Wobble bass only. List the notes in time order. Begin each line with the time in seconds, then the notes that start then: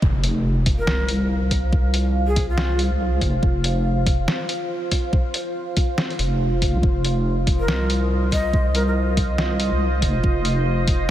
0.02 F1
0.87 C2
2.91 C2
3.21 F1
3.43 F1
6.19 F1
6.74 C2
6.83 F1
7.68 C2
9.73 C2
10.02 F1
10.24 F1